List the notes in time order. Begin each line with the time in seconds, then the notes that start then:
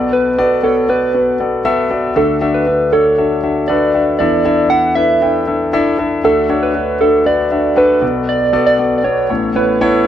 Already playing: B1 B2 B3 F#4 A4 D5
0.13 B4
0.38 B3 F#4 A4 D5
0.63 B3 F#4 A4 C#5
0.89 B3 F#4 A4 B4 D5
1.14 B3 F#4 A4 B4
1.40 B3 F#4 A4 D5
1.65 B3 F#4 A4 E5
1.90 B3 F#4 A4 D5
2.16 D2 D3 D4 F#4 A4 E5
2.41 D4 F#4 A4 E5
2.54 B4
2.67 D4 F#4 A4 E5
2.92 D4 F#4 A4 C#5
3.18 D4 F#4 A4 E5
3.43 D4 F#4 A4 E5
3.68 D4 F#4 A4 B4 D5
3.94 D4 F#4 A4 E5
4.19 E2 E3 D4 E4 A4 D5 E5
4.45 D4 E4 A4 E5
4.70 D4 E4 A4 E5 F#5
4.95 D4 E4 A4 B4 E5
5.22 D4 E4 A4 G5
5.47 D4 E4 A4 E5
5.73 D4 E4 A4 E5
5.99 D4 E4 A4 E5
6.24 D2 D3 D4 F#4 A4 E5
6.49 D4 F#4 A4 C#5
6.63 B4
6.75 D4 F#4 A4 B4
7.01 D4 F#4 A4 E5
7.26 D4 F#4 A4 B4 D5
7.51 D4 F#4 A4 E5
7.76 D4 F#4 A4 B4
8.01 B1 B2 B3 F#4 A4 D5
8.29 D5
8.53 B3 F#4 A4 D5
8.66 D5
8.79 B3 F#4 A4 D5
8.98 D5
9.04 B3 F#4 A4 C#5 D5
9.30 A1 A2 B3 E4 A4 C#5
9.55 B3 E4 A4 B4 C#5
9.81 B3 E4 A4 C#5